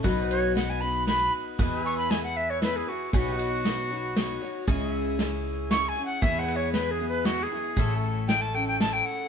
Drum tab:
RD |xxx-x-|x-x-x-|xxx-x-|x-x-x-|
SD |--o-o-|--o-o-|--o-o-|--o-o-|
BD |o-----|o-----|o-----|o-----|

RD |xxx-x-|x-x-x-|
SD |--o-o-|--o-o-|
BD |o-----|o-----|